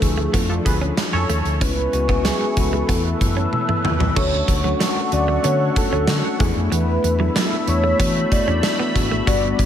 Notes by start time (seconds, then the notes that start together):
Already playing: F3 A3 D4 E4 F4
0.02 D2 G#4, kick, closed hi-hat
0.18 A3
0.33 F2 F3 A3 B3 D4 F4 A4, kick, closed hi-hat
0.50 F3 D4 A4
0.65 D2 B3 G#4 B4, muted clean electric guitar stroke, kick, closed hi-hat
0.81 C#4
0.97 snare, closed hi-hat
1.13 F2 C#4 A4 C#5
1.29 D#2 A3, closed hi-hat
1.45 D2, closed hi-hat
1.60 C#2 G#3 B3 C#4 E4 B4 E5 G#5 C#6, kick, closed hi-hat
1.92 C#2 G#3 B3 C#4 F#4, muted clean electric guitar stroke, closed hi-hat
2.09 B3, kick
2.25 F#3 G#4, snare, closed hi-hat
2.41 muted clean electric guitar stroke
2.56 C#2 E3 B3 C#4 F#4 A4, kick, closed hi-hat
2.73 G#3
2.88 E2 E3 A3 B3 E4 E5 A5 E6, kick, closed hi-hat
3.21 F#2, muted clean electric guitar stroke, kick, closed hi-hat
3.37 C#4
3.53 high tom
3.69 A3, mid tom
3.84 D#2, muted clean electric guitar stroke, mid tom
4.00 F#3, floor tom
4.16 D2 F#3 A3 C#4 D4 F#4 A4 C#5 F#5 C#6, kick, crash
4.48 D2, muted clean electric guitar stroke, kick, closed hi-hat
4.64 F#3 A3 C#4 D4 F#4
4.80 F#3, snare, closed hi-hat
4.96 muted clean electric guitar stroke
5.11 D2 A3 C#4 D4 F#4 D5, closed hi-hat
5.28 A3
5.43 D3 A3 B3 C#4 D4 F#4 C#5, closed hi-hat
5.76 A4, muted clean electric guitar stroke, kick, closed hi-hat
5.90 D2 A3 C#4 D4 F#4
6.07 D3, snare, closed hi-hat
6.38 E2 E3 A3 B3 D4 E4 G#4 E5 B5, kick, closed hi-hat
6.56 F2
6.72 E2 E3 B4, closed hi-hat
7.04 E2, muted clean electric guitar stroke, closed hi-hat
7.19 F#3 A3 B3 D4 E4
7.36 F#3, snare, closed hi-hat
7.52 muted clean electric guitar stroke
7.66 E2 A3 B3 D4 E4 C#5, closed hi-hat
7.84 A3
7.99 E3 A3 B3 D4 F#4 C#5, kick, closed hi-hat
8.32 D5, muted clean electric guitar stroke, kick, closed hi-hat
8.46 E2 A3 B3 C#4 D4 E4
8.63 snare, closed hi-hat
8.79 B3
8.95 G#1 A3 B3 D4 F#4, muted clean electric guitar stroke, kick, closed hi-hat
9.11 A3
9.26 G1 D3 G3 B3 D4 F#4 D5 F#5, kick, closed hi-hat
9.59 G1, muted clean electric guitar stroke, kick, closed hi-hat